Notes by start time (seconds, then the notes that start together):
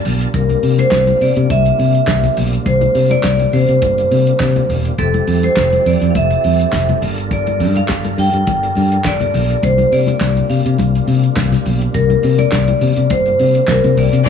Already playing: G3 D4 F4 A#4 A5
0.05 B1, open hi-hat, low conga
0.21 closed hi-hat
0.34 C2 C3 A#3 A#4, kick, closed hi-hat, muted conga
0.49 closed hi-hat, high conga
0.63 C3, open hi-hat
0.78 C5, closed hi-hat, high conga
0.91 C2, kick, snare, clap, closed hi-hat
1.07 closed hi-hat, high conga
1.21 C3 D5, open hi-hat
1.36 C3, closed hi-hat
1.50 C2 E5, kick, closed hi-hat, high conga
1.65 closed hi-hat, muted conga
1.79 C3, open hi-hat, high conga
1.95 closed hi-hat
2.07 C2, kick, snare, clap, closed hi-hat
2.24 closed hi-hat, high conga, low conga
2.37 B1, open hi-hat, low conga
2.53 closed hi-hat
2.66 C2 C5, kick, closed hi-hat, muted conga
2.81 closed hi-hat, high conga
2.95 C3, open hi-hat
3.10 D5, closed hi-hat, high conga
3.23 C2, kick, snare, clap, closed hi-hat
3.39 closed hi-hat, high conga
3.53 C3 C5, open hi-hat, low conga
3.68 C3, closed hi-hat
3.82 G1, kick, closed hi-hat, muted conga, high conga
3.98 closed hi-hat
4.11 C3, open hi-hat, high conga
4.27 closed hi-hat
4.40 C3, kick, snare, clap, closed hi-hat
4.56 closed hi-hat, muted conga, high conga, low conga
4.70 E1, open hi-hat, low conga
4.85 closed hi-hat
4.98 F1 F3 C4 E4 G4 A4, kick, closed hi-hat, muted conga
5.14 closed hi-hat, muted conga, high conga
5.27 F2, open hi-hat
5.43 C5, closed hi-hat, high conga
5.56 F1, kick, snare, clap, closed hi-hat
5.72 closed hi-hat, muted conga, high conga
5.86 F2 D5, open hi-hat
6.01 F2, closed hi-hat
6.10 F5
6.15 F1 E5, kick, closed hi-hat, muted conga, high conga
6.30 closed hi-hat, muted conga
6.44 F2, open hi-hat, high conga
6.60 closed hi-hat
6.73 F1, kick, snare, clap, closed hi-hat, muted conga
6.89 closed hi-hat, muted conga, high conga, low conga
7.01 G1 G3 D4 F4 A#4, open hi-hat, low conga
7.18 closed hi-hat
7.31 D5, kick, closed hi-hat, muted conga
7.47 closed hi-hat, muted conga, high conga
7.60 G2, open hi-hat
7.76 F5, closed hi-hat, high conga
7.88 G1, kick, snare, clap, closed hi-hat, muted conga
8.04 closed hi-hat, muted conga, high conga
8.18 G2 G5, open hi-hat
8.33 G2, closed hi-hat
8.47 G1, kick, closed hi-hat, muted conga, high conga
8.63 closed hi-hat
8.75 G2, open hi-hat, high conga
8.92 closed hi-hat
9.05 G1 D5, kick, snare, clap, closed hi-hat, muted conga
9.20 closed hi-hat, high conga, low conga
9.34 B1, open hi-hat, low conga
9.50 closed hi-hat
9.63 C2 C3 A#3 C5, kick, closed hi-hat, muted conga
9.78 closed hi-hat, muted conga, high conga
9.92 C3 D5, open hi-hat
10.07 closed hi-hat, high conga
10.20 C2, kick, snare, clap, closed hi-hat
10.36 closed hi-hat, high conga
10.50 C3 F5, open hi-hat
10.66 C3, closed hi-hat
10.78 C2, kick, closed hi-hat, muted conga, high conga
10.95 closed hi-hat
11.07 C3, open hi-hat, high conga
11.23 closed hi-hat
11.36 C2, kick, snare, clap, closed hi-hat, muted conga
11.52 snare, closed hi-hat, high conga, low conga
11.66 B1, open hi-hat, low conga
11.81 closed hi-hat
11.94 C2 A#4, kick, closed hi-hat, muted conga
12.10 closed hi-hat, high conga
12.23 C3, open hi-hat
12.38 D5, closed hi-hat, high conga
12.52 C2, kick, snare, clap, closed hi-hat
12.68 closed hi-hat, high conga
12.81 C3, open hi-hat, low conga
12.96 C3, closed hi-hat
13.10 G1 C5, kick, closed hi-hat, high conga
13.26 closed hi-hat
13.39 C3, open hi-hat, high conga
13.55 closed hi-hat
13.68 C2 A#4, kick, snare, clap, closed hi-hat
13.84 C3, closed hi-hat, high conga, low conga
13.97 C2 D5, open hi-hat, low conga
14.13 C3, closed hi-hat
14.25 D3 F3 C4 F4 E5